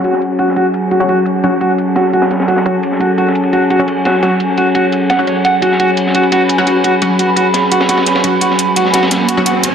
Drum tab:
RD |x-x-x-xxx-x-x-x-|x-x-x-x-xxxxxxx-|x-x-x-xxx-x-x-x-|x-x-x-x-x-x-x-x-|
HH |x-x-x-x-x-x-x-x-|x-x-x-x-x-x-x-x-|x-x-x-x-x-x-x-x-|x-x-x-x-x-x-x-x-|
SD |-o---o----------|------o--ooooo--|-o---o--------o-|o---------o-----|

RD |x-x-x-xxx-x-x-x-|x-x-x-x-xxxxxxx-|x-x-x-xxx-x-x-x-|
HH |x-x-x-x-x-x-x-x-|x-x-x-x-x-x-x-x-|x-x-x-x-x-x-x-x-|
SD |-o---o----------|------o--ooooo--|-o---oooo-------|